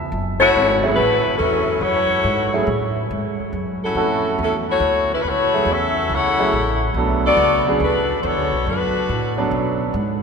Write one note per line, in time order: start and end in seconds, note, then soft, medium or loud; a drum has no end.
0.00 0.11 C#2 medium
0.12 0.53 F#1 medium
0.40 0.80 A3 loud
0.40 0.80 E4 loud
0.40 0.80 F#4 loud
0.40 0.80 C#5 loud
0.55 0.96 G#1 loud
0.83 0.96 F#3 medium
0.83 0.96 A3 medium
0.83 0.96 C#4 medium
0.83 0.96 E4 medium
0.83 0.97 G#4 medium
0.96 1.23 A1 loud
0.96 1.37 A3 medium
0.96 1.36 E4 medium
0.96 1.36 F#4 medium
0.96 1.36 B4 loud
1.25 muted upright bass stroke soft
1.37 1.80 E2 medium
1.37 1.79 F#3 medium
1.37 1.79 C#4 medium
1.37 1.79 E4 medium
1.37 1.78 A4 medium
1.81 2.23 F#2 medium
1.81 2.68 E4 medium
1.81 2.67 F#4 loud
1.81 2.68 A4 loud
1.81 2.67 C#5 loud
2.24 2.66 G#2 medium
2.53 2.66 F#3 medium
2.53 2.67 A3 medium
2.53 2.67 C#4 medium
2.53 2.67 E4 medium
2.53 2.67 G#4 medium
2.67 3.09 A2 loud
3.11 3.37 G#2 medium
3.39 muted upright bass stroke soft
3.53 3.94 F#2 medium
3.84 4.36 C#4 medium
3.84 4.36 E4 medium
3.84 4.36 F#4 medium
3.84 4.36 A4 medium
3.95 4.37 F2 medium
3.95 4.62 A3 medium
3.95 4.62 C#4 medium
3.95 4.62 E4 medium
3.95 4.62 F#4 medium
3.95 4.62 A4 medium
4.39 4.79 E2 medium
4.39 4.54 C#4 medium
4.43 4.55 F#3 medium
4.43 4.55 E4 medium
4.43 4.55 A4 medium
4.70 5.09 A3 medium
4.70 5.09 E4 medium
4.70 5.09 F#4 medium
4.70 5.09 C#5 loud
4.80 5.22 D2 medium
5.14 5.21 G#3 medium
5.14 5.21 C#4 medium
5.14 5.22 E4 medium
5.14 5.20 B4 medium
5.22 5.65 C#2 medium
5.22 5.25 B4 medium
5.28 5.69 A3 medium
5.28 5.69 E4 loud
5.28 5.69 F#4 loud
5.28 5.69 C#5 loud
5.53 5.66 F#3 medium
5.53 5.66 A3 medium
5.53 5.67 C#4 medium
5.53 5.67 E4 medium
5.53 5.67 G#4 medium
5.65 6.08 E2 loud
5.71 6.12 C#4 loud
5.71 6.12 F#4 loud
5.71 6.12 A4 loud
5.71 6.12 E5 loud
6.09 6.51 C#2 medium
6.14 6.83 E4 medium
6.14 6.83 A4 medium
6.14 6.83 C#5 medium
6.14 6.83 F#5 loud
6.38 6.51 F#3 medium
6.38 6.52 A3 medium
6.38 6.52 C#4 medium
6.38 6.52 E4 medium
6.38 6.52 G#4 medium
6.52 6.94 A1 medium
6.94 7.36 B1 medium
6.94 7.61 F#3 medium
6.94 7.62 A3 medium
6.94 7.61 B3 medium
6.94 7.62 D4 medium
6.98 7.62 A4 medium
7.26 7.65 B3 loud
7.26 7.65 F#4 loud
7.26 7.65 A4 loud
7.26 7.65 D5 loud
7.37 7.79 C#2 loud
7.67 7.80 F#3 medium
7.67 7.80 B3 medium
7.67 7.80 C#4 medium
7.67 7.80 D4 medium
7.67 7.80 G#4 medium
7.80 8.22 D2 medium
7.80 8.17 A3 medium
7.80 8.17 D4 medium
7.80 8.18 F#4 medium
7.80 8.18 B4 loud
8.21 8.37 E2 loud
8.21 8.25 C5 medium
8.26 8.67 B3 medium
8.26 8.67 F#4 medium
8.26 8.67 A4 medium
8.26 8.67 C#5 loud
8.37 8.51 D2 medium
8.52 8.65 B1 medium
8.66 9.08 F#2 medium
8.66 9.49 A3 medium
8.66 9.49 D4 medium
8.66 9.49 F#4 medium
8.66 9.49 B4 medium
9.09 9.50 A2 loud
9.38 9.92 F#3 medium
9.38 9.92 B3 medium
9.38 9.92 C#4 medium
9.38 9.92 D4 medium
9.38 9.92 A4 medium
9.51 9.93 B2 loud
9.94 10.23 G#2 medium